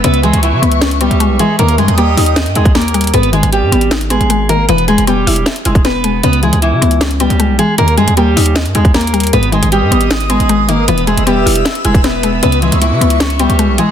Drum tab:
HH |x--x--x--x--x-----x--x--x--x--x--x--x-----x-----|x--x--x--x--x-----o--x--x--x--x--x--x-x-x-x-xxx-|x--x--x--x--x-----x--x--x--x--x--x--x-----x-----|x--x--x--x--x-----o--x--x--x--x--x--x-----x-----|
SD |------------------------o-----------------------|------------------------o-----------o-----------|------------------------o-----------------------|------------------------o-----------o-----------|
BD |------------------------------------------------|---------------------------------o--------------|------------------------------------------------|---------------------------------o--------------|

HH |x--x--x--x--x-----x--x--x--x--x--x--x-----x-----|x--x--x--x--x-----o--x--x--x--x--x--x-x-x-x-xxx-|x--x--x--x--x-----x--x--x--x--x--x--x-----x-----|x--x--x--x--x-----o--x--x--x--x--x--x-----x-----|
SD |------------------------o-----------------------|------------------------o-----------o-----------|------------------------o-----------------------|------------------------o-----------o-----------|
BD |------------------------------------------------|---------------------------------o--------------|------------------------------------------------|---------------------------------o--------------|

HH |x--x--x--x--x-----x--x--x--x--x--x--x-----x-----|
SD |------------------------o-----------------------|
BD |------------------------------------------------|